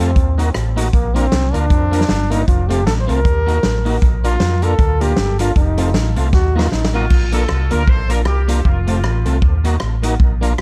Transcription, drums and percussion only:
0.16 kick, closed hi-hat
0.39 closed hi-hat
0.54 cross-stick, closed hi-hat
0.77 closed hi-hat
0.93 kick, closed hi-hat
1.16 closed hi-hat
1.32 snare, closed hi-hat
1.54 closed hi-hat
1.70 kick, closed hi-hat
1.93 closed hi-hat
2.01 snare
2.09 snare, closed hi-hat
2.31 closed hi-hat
2.48 kick, closed hi-hat
2.70 closed hi-hat
2.87 snare, closed hi-hat
3.09 closed hi-hat
3.25 kick, closed hi-hat
3.48 closed hi-hat
3.63 snare, closed hi-hat
3.86 open hi-hat
4.02 kick, closed hi-hat
4.24 closed hi-hat
4.40 snare, closed hi-hat
4.62 closed hi-hat
4.79 kick, closed hi-hat
5.01 closed hi-hat
5.16 snare, closed hi-hat
5.39 closed hi-hat
5.55 kick, closed hi-hat
5.78 closed hi-hat
5.94 snare, closed hi-hat
6.16 closed hi-hat
6.33 kick, snare
6.59 snare
6.72 snare
6.85 snare
7.10 kick, crash
7.32 closed hi-hat
7.49 cross-stick
7.70 closed hi-hat
7.88 kick
8.10 closed hi-hat
8.25 cross-stick
8.48 closed hi-hat
8.65 kick
8.87 closed hi-hat
9.04 cross-stick
9.25 closed hi-hat
9.42 kick
9.64 closed hi-hat
9.80 cross-stick
10.03 closed hi-hat
10.20 kick
10.42 closed hi-hat
10.58 cross-stick

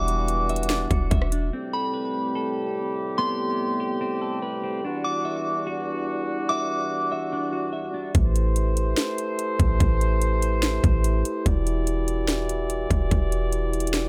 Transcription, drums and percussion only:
0.08 closed hi-hat
0.28 closed hi-hat
0.49 closed hi-hat
0.56 closed hi-hat
0.63 closed hi-hat
0.70 snare, closed hi-hat
0.91 kick, closed hi-hat
1.11 kick, closed hi-hat
1.22 cross-stick
1.32 closed hi-hat
8.15 kick, closed hi-hat
8.36 closed hi-hat
8.56 closed hi-hat
8.77 closed hi-hat
8.97 snare, closed hi-hat
9.18 closed hi-hat
9.39 closed hi-hat
9.60 kick, closed hi-hat
9.80 kick, closed hi-hat
10.01 closed hi-hat
10.22 closed hi-hat
10.42 closed hi-hat
10.63 snare, closed hi-hat
10.84 kick, closed hi-hat
11.04 closed hi-hat
11.25 closed hi-hat
11.46 kick, closed hi-hat
11.67 closed hi-hat
11.87 closed hi-hat
12.08 closed hi-hat
12.28 snare, closed hi-hat
12.49 closed hi-hat
12.70 closed hi-hat
12.91 kick, closed hi-hat
13.11 kick, closed hi-hat
13.32 closed hi-hat
13.53 closed hi-hat
13.73 closed hi-hat
13.80 closed hi-hat
13.87 closed hi-hat
13.94 snare, closed hi-hat

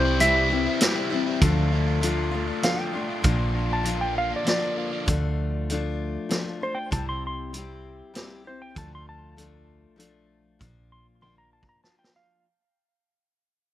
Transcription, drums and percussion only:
0.20 closed hi-hat
0.81 snare, closed hi-hat
1.41 kick, closed hi-hat
2.03 closed hi-hat
2.63 snare, closed hi-hat
3.24 kick, closed hi-hat
3.85 closed hi-hat
4.47 snare, closed hi-hat
5.07 kick, closed hi-hat
5.70 closed hi-hat
6.30 snare, closed hi-hat
6.92 kick, closed hi-hat
7.54 closed hi-hat
8.15 snare, closed hi-hat
8.76 kick, closed hi-hat
9.38 closed hi-hat
10.00 closed hi-hat
10.61 kick, closed hi-hat
11.22 high tom
11.63 kick
11.84 snare
12.04 snare

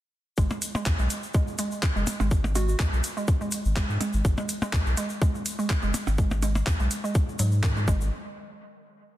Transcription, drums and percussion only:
0.37 kick, shaker
0.50 percussion blips, shaker
0.62 closed hi-hat, shaker
0.75 percussion blips, shaker
0.85 kick, clap, shaker
0.99 shaker
1.10 closed hi-hat, shaker
1.23 shaker
1.34 kick, shaker
1.48 shaker
1.58 closed hi-hat, shaker
1.71 shaker
1.83 kick, clap, percussion blips, shaker
1.96 shaker
2.07 closed hi-hat, percussion blips, shaker
2.20 percussion blips, shaker
2.31 kick, shaker
2.44 percussion blips, shaker
2.55 closed hi-hat, percussion blips, shaker
2.69 shaker
2.80 kick, clap, shaker
2.93 shaker
3.04 closed hi-hat, shaker
3.17 shaker
3.28 kick, shaker
3.41 shaker
3.51 closed hi-hat, shaker
3.65 shaker
3.76 kick, clap, percussion blips, shaker
3.90 shaker
4.01 closed hi-hat, percussion blips, shaker
4.13 shaker
4.25 kick, shaker
4.38 percussion blips, shaker
4.49 closed hi-hat, shaker
4.62 percussion blips, shaker
4.73 kick, clap, shaker
4.86 shaker
4.97 closed hi-hat, shaker
5.09 shaker
5.22 kick, shaker
5.35 shaker
5.46 closed hi-hat, shaker
5.59 shaker
5.70 kick, clap, percussion blips, shaker
5.82 shaker
5.94 closed hi-hat, percussion blips, shaker
6.07 percussion blips, shaker
6.18 kick, shaker
6.31 percussion blips, shaker
6.42 closed hi-hat, percussion blips, shaker
6.55 percussion blips, shaker
6.67 kick, clap, shaker
6.80 shaker
6.91 closed hi-hat, shaker
7.05 shaker
7.15 kick, shaker
7.29 shaker
7.39 closed hi-hat, shaker
7.52 shaker
7.63 kick, clap, percussion blips, shaker
7.76 shaker
7.88 kick, percussion blips, shaker
8.01 shaker

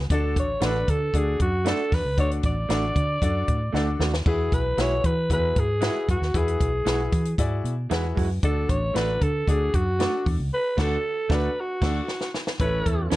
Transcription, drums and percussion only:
0.10 kick, closed hi-hat
0.36 kick, closed hi-hat
0.61 snare, closed hi-hat
0.88 kick, closed hi-hat
1.14 kick, closed hi-hat
1.40 kick, closed hi-hat
1.65 snare, closed hi-hat
1.92 kick, snare, open hi-hat
2.18 kick, closed hi-hat
2.31 closed hi-hat
2.43 kick, closed hi-hat
2.70 snare, closed hi-hat
2.96 kick, closed hi-hat
3.22 kick, closed hi-hat
3.48 kick, closed hi-hat
3.75 snare
4.01 snare
4.14 snare
4.26 kick, splash
4.52 kick, closed hi-hat
4.78 snare, closed hi-hat
5.04 kick, closed hi-hat
5.30 kick, closed hi-hat
5.56 kick, closed hi-hat
5.81 snare, closed hi-hat
6.09 kick, closed hi-hat
6.22 snare
6.34 kick, closed hi-hat
6.48 closed hi-hat
6.61 kick, closed hi-hat
6.86 snare, closed hi-hat
7.12 kick, closed hi-hat
7.25 closed hi-hat
7.38 kick, closed hi-hat
7.65 closed hi-hat
7.91 snare, closed hi-hat
8.17 kick, open hi-hat
8.43 kick, closed hi-hat
8.69 kick, closed hi-hat
8.96 snare, closed hi-hat
9.21 kick, closed hi-hat
9.48 kick, closed hi-hat
9.74 kick, closed hi-hat
10.00 snare, closed hi-hat
10.26 kick, open hi-hat
10.78 kick, snare, crash
11.30 kick, snare
11.82 kick, snare, crash
12.08 snare
12.21 snare
12.34 snare
12.47 snare
12.59 kick, closed hi-hat
12.86 kick, closed hi-hat
13.11 snare, closed hi-hat

